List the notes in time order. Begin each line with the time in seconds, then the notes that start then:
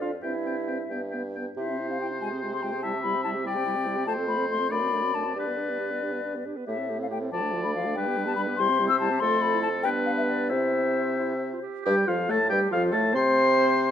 Already playing: F2 D5
0.01 D4 F4 F5
0.22 G2 C4 E4 E5 G5
0.46 C4 G5
0.68 C4 G5
0.90 G2 B3 G5
1.11 B3 G5
1.35 B3 G5
1.56 C3 E4 G4 C5 E5
1.67 C4 E4
1.78 E4 G4
1.88 C4 E4 F5
2.00 E4 G4 G5
2.10 C4 E4
2.20 G#3 F4 G#5
2.31 C4 G#4
2.42 G#3 F4
2.51 C4 G#4 C6
2.62 G#3 F4 G5
2.72 C4 G#4
2.83 G3 E4 E5 A5
2.94 C4 G4
3.03 G3 E4 B5
3.14 C4 G4
3.24 G3 E4 A5
3.33 C4 G4
3.44 G3 E4 D5 G5
3.54 C4 G4
3.65 G3 E4
3.75 C4 G4
3.85 G3 E4
3.96 C4 G4
4.06 F2 A3 F4 C5 A5
4.16 C4 A4
4.27 A3 F4 B5
4.37 C4 A4
4.48 A3 F4 C6
4.59 C4 A4
4.69 F#2 A3 D4 D5 B5
4.81 C4 F#4
4.91 A3 D4
5.02 C4 F#4
5.14 A3 D4 A5
5.25 C4 F#4
5.35 G2 D4 G4 B4 D5
5.46 B3 B4
5.57 D4 G4
5.69 B3 B4
5.80 D4 G4
5.91 B3 B4
6.02 D4 G4
6.12 B3 B4
6.24 D4 G4
6.35 B3 B4
6.46 D4 G4
6.56 B3 B4
6.67 A2 A3 G4 E5
6.78 C4 A4
6.89 A3 G4
6.99 C4 A4 F5
7.10 A3 G4 G5
7.21 C4 A4
7.32 D2 F3 F4 D5 A5
7.42 A3 D4
7.53 F3 F4
7.64 A3 D4 B5
7.75 F3 F4 F5
7.86 A3 D4
7.96 G2 G3 D4 B4 G5
8.07 B3 G4
8.17 G3 D4
8.27 B3 G4 A5
8.36 G3 D4 B5
8.47 B3 G4
8.57 C3 G3 E4 C5 C6
8.69 C4 G4
8.80 G3 E4
8.89 C4 G4 E6
9.00 G3 E4 A5
9.11 C4 G4
9.20 F2 A3 F4 A4 C6
9.42 B5
9.53 E4
9.63 A5
9.83 G2 B3 D4 B4 G5
10.06 F5
10.17 E5
10.28 D5
10.49 C3 C4 E4 C5 E5
11.19 E4
11.52 F4
11.62 G4
11.85 G2 G3 G4 G5
12.07 F2 F3 F4 F5
12.29 A2 A3 A4 A5
12.49 G2 G3 G4 G5
12.70 F2 F3 F4 F5
12.91 A2 A3 A4 A5
13.12 C3 C4 C5 C6